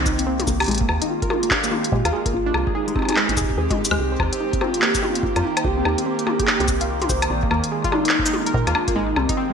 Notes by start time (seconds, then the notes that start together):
Already playing: D#3 A#3 C4 D#4 G4
0.00 C2
0.06 D#4, kick, cabasa
0.19 C4, closed hi-hat
0.27 C4
0.40 closed hi-hat, high tom
0.47 C2 A#3, kick, cabasa
0.60 G4, closed hi-hat, high woodblock
0.62 closed hi-hat
0.64 closed hi-hat
0.66 G#3 F4, closed hi-hat
0.68 A#1 G#3, closed hi-hat
0.71 closed hi-hat
0.74 closed hi-hat
0.78 A#3, kick, closed hi-hat
0.89 D#2, high woodblock
1.02 D#4, closed hi-hat
1.10 F4
1.22 A#4, kick, closed hi-hat
1.30 A#4, high tom, high woodblock
1.43 A#3, closed hi-hat
1.51 D4 G4, kick, clap
1.64 A#3, closed hi-hat, cabasa
1.72 A#3, high tom
1.84 closed hi-hat
1.92 A#2 G#3, kick
2.05 D#2 F4, closed hi-hat, high woodblock
2.13 G#3 F4
2.26 A#3, kick, closed hi-hat
2.34 G#1 C4 F4 G4
2.46 D4
2.54 C2, high woodblock
2.67 G#4, kick
2.75 D#4 G#4
2.88 G#3, closed hi-hat
2.96 C4, kick, high tom, high woodblock
2.99 high woodblock
3.02 high tom, high woodblock
3.05 G#3, closed hi-hat, high woodblock
3.09 high tom, high woodblock
3.10 high woodblock
3.12 high woodblock
3.14 G#3, clap, high woodblock
3.29 G#1, closed hi-hat
3.37 G#4, kick, cabasa
3.41 kick
3.44 kick
3.50 kick
3.55 D#2 G#4, kick
3.71 G#3, kick, closed hi-hat, high tom
3.78 G#2
3.85 closed hi-hat, cabasa
3.91 D#2 G#3, high woodblock
3.99 C2 D#3 A#3
4.12 C5
4.20 D#2 C5, kick, high woodblock
4.33 C4, closed hi-hat
4.40 D#4
4.53 C4, kick, closed hi-hat
4.61 C4 F4, high tom, high woodblock
4.74 closed hi-hat
4.82 A#3 G4, clap
4.95 G4, kick, closed hi-hat, cabasa
5.03 D#4 F4, high tom
5.15 C4, closed hi-hat
5.23 G1, kick
5.36 F2 F4, closed hi-hat, high woodblock
5.44 D#4
5.57 C5, closed hi-hat, high woodblock
5.64 C2 G4 C5, kick
5.77 C4
5.85 D#2 D#4, high woodblock
5.98 C4, closed hi-hat
6.06 C4
6.19 closed hi-hat
6.27 A#3, high tom, high woodblock
6.40 G4 G#4, kick, closed hi-hat
6.47 D#4 G4, clap
6.60 C2 C4, closed hi-hat
6.68 kick, cabasa
6.81 F4, closed hi-hat
7.02 C5, closed hi-hat, high tom
7.09 C2 C5, kick, cabasa
7.22 C4, closed hi-hat, high woodblock
7.30 A#1 G#3 D4 F4
7.43 A#3, kick
7.51 D#2 A#3, high woodblock
7.64 closed hi-hat
7.72 G#3
7.84 F4, kick, closed hi-hat
7.92 D4 D#4, high tom, high woodblock
8.05 A#3, clap, closed hi-hat
8.19 kick
8.26 D#4, closed hi-hat, cabasa
8.34 high tom
8.46 A#4, closed hi-hat
8.54 A#2 F4 A#4, kick
8.67 D#2 A#3, closed hi-hat, high woodblock
8.75 D4, high woodblock
8.88 A#3, kick, closed hi-hat
8.96 G#1 G#3 C4 D#4 G4
9.16 C2 G3 C4, high woodblock
9.29 D#4, kick, closed hi-hat
9.37 C4
9.50 G#3